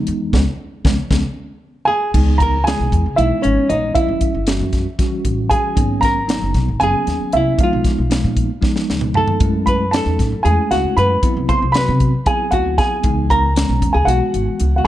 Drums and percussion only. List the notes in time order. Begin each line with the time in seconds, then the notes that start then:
0.07 closed hi-hat
0.33 kick, snare, muted conga
0.85 kick, snare, muted conga
1.11 kick, snare, muted conga
2.14 kick, crash
2.40 kick, closed hi-hat
2.67 snare, closed hi-hat
2.92 kick, closed hi-hat
3.18 closed hi-hat
3.44 closed hi-hat
3.70 closed hi-hat
3.95 kick, closed hi-hat
4.21 kick, closed hi-hat
4.47 snare, closed hi-hat
4.73 kick, snare, closed hi-hat
4.99 kick, snare, closed hi-hat
5.25 kick, closed hi-hat
5.51 kick, closed hi-hat
5.77 kick, closed hi-hat
6.03 kick, snare, closed hi-hat
6.29 snare, closed hi-hat
6.54 kick, snare, closed hi-hat
6.81 closed hi-hat
7.07 snare, closed hi-hat
7.33 closed hi-hat
7.59 kick, closed hi-hat
7.84 kick, snare, closed hi-hat
8.11 snare, closed hi-hat
8.37 kick, closed hi-hat
8.62 kick, snare
8.76 snare
8.90 snare
9.01 mid tom
9.14 floor tom
9.28 floor tom
9.40 kick, closed hi-hat
9.67 kick, closed hi-hat
9.93 snare, closed hi-hat
10.19 kick, snare, closed hi-hat
10.46 closed hi-hat
10.71 snare, closed hi-hat
10.98 closed hi-hat
11.23 kick, closed hi-hat
11.49 kick, closed hi-hat
11.74 snare, closed hi-hat
12.00 kick, closed hi-hat
12.26 kick, closed hi-hat
12.52 kick, closed hi-hat
12.78 kick, snare, closed hi-hat
13.04 kick, closed hi-hat
13.30 kick, closed hi-hat
13.56 snare, closed hi-hat
13.82 kick, closed hi-hat
14.08 closed hi-hat
14.34 closed hi-hat
14.60 closed hi-hat